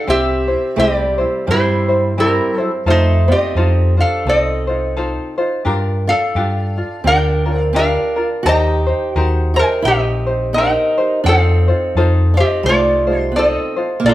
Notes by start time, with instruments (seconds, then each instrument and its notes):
0.07 picked electric bass C2, ukulele C4 E4 G4 C5, steel-string acoustic guitar C4, resonator guitar played with a steel bar G4 E5
0.48 ukulele C4 E4 C5
0.76 picked electric bass C2, steel-string acoustic guitar G3, ukulele C4 E4 G4 C5, resonator guitar played with a steel bar D5
0.80 resonator guitar played with a steel bar G4
1.18 ukulele C4 E4 C5
1.47 picked electric bass G2, steel-string acoustic guitar G3, ukulele C4 E4 G4 C5, resonator guitar played with a steel bar C5
1.51 resonator guitar played with a steel bar E4
1.88 ukulele C4 E4 C5
2.18 steel-string acoustic guitar G3, ukulele C4 E4 G4 C5, resonator guitar played with a steel bar E4 A#4
2.56 steel-string acoustic guitar F#3, ukulele E4 C5, resonator guitar played with a steel bar A4
2.60 ukulele C4
2.86 picked electric bass F2, steel-string acoustic guitar A3, ukulele D#4 F4 A4 C5
2.90 resonator guitar played with a steel bar D#4 C5
3.28 steel-string acoustic guitar C4, ukulele D#4 F4 C5, resonator guitar played with a steel bar D#5
3.32 resonator guitar played with a steel bar G4
3.55 picked electric bass F2, ukulele D#4 F4 A4 C5
3.97 steel-string acoustic guitar D4, ukulele F4 C5, resonator guitar played with a steel bar F5
4.01 resonator guitar played with a steel bar A4
4.25 picked electric bass C2, steel-string acoustic guitar C4, ukulele D#4 F4 A4 C5
4.29 resonator guitar played with a steel bar A4 D#5
4.67 ukulele D#4 F4 C5
4.96 ukulele D#4 F4 A4 C5
5.38 ukulele D#4 F4 C5
5.65 picked electric bass G2, ukulele D4 F4 G4 A#4
6.07 steel-string acoustic guitar D4, ukulele D4 F4, resonator guitar played with a steel bar A4 F5
6.35 picked electric bass G2, ukulele D4 F4 G4
6.78 ukulele D4 F4
7.04 picked electric bass D2, steel-string acoustic guitar D4, ukulele D4 F4 G4 A#4, resonator guitar played with a steel bar G5
7.09 resonator guitar played with a steel bar A#4
7.46 ukulele D4 F4 A#4
7.54 steel-string acoustic guitar C4
7.60 resonator guitar played with a steel bar F5
7.73 steel-string acoustic guitar D4, ukulele D4 F4 G4 A#4, resonator guitar played with a steel bar F5
7.79 resonator guitar played with a steel bar A#4
8.16 ukulele D4 F4 A#4
8.43 picked electric bass D#2, ukulele D#4 G4 A#4 C5, steel-string acoustic guitar G4, resonator guitar played with a steel bar A#5
8.49 resonator guitar played with a steel bar D#5
8.87 ukulele D#4 G4 C5
9.15 picked electric bass D#2, ukulele D#4 G4 A#4 C5, steel-string acoustic guitar F#4
9.22 resonator guitar played with a steel bar A5
9.54 steel-string acoustic guitar D#4, ukulele G4 C5, resonator guitar played with a steel bar G5
9.58 ukulele D#4, resonator guitar played with a steel bar A#4
9.82 picked electric bass A#1, steel-string acoustic guitar C4, ukulele D#4 A#4, resonator guitar played with a steel bar D#5
9.87 ukulele G4 C5, resonator guitar played with a steel bar G4
10.26 ukulele D#4 G4 C5
10.53 steel-string acoustic guitar D#4, ukulele D#4 G4 A#4, resonator guitar played with a steel bar G5
10.57 resonator guitar played with a steel bar A#4, ukulele C5
10.98 ukulele D#4 G4 C5
11.24 picked electric bass F2, steel-string acoustic guitar C4, ukulele D#4 F4 A4, resonator guitar played with a steel bar F5
11.28 resonator guitar played with a steel bar A4, ukulele C5
11.68 ukulele D#4 F4 C5
11.95 picked electric bass F2, ukulele D#4 F4 A4 C5
12.34 steel-string acoustic guitar C4, ukulele C5, resonator guitar played with a steel bar D#5
12.38 ukulele D#4 F4, resonator guitar played with a steel bar G4
12.63 picked electric bass C2, steel-string acoustic guitar A3, ukulele D#4 A4, resonator guitar played with a steel bar D5
12.67 ukulele F4 C5, resonator guitar played with a steel bar F4
13.07 ukulele D#4 F4 C5
13.13 steel-string acoustic guitar G3
13.20 resonator guitar played with a steel bar C5
13.32 steel-string acoustic guitar B3
13.36 ukulele D#4 F4 A4 C5, resonator guitar played with a steel bar A4 D#5
13.43 steel-string acoustic guitar C4
13.76 ukulele D#4 F4 C5
14.00 steel-string acoustic guitar A#3
14.05 picked electric bass A#1, ukulele D4 F4 A4 A#4, resonator guitar played with a steel bar D5
14.09 resonator guitar played with a steel bar F4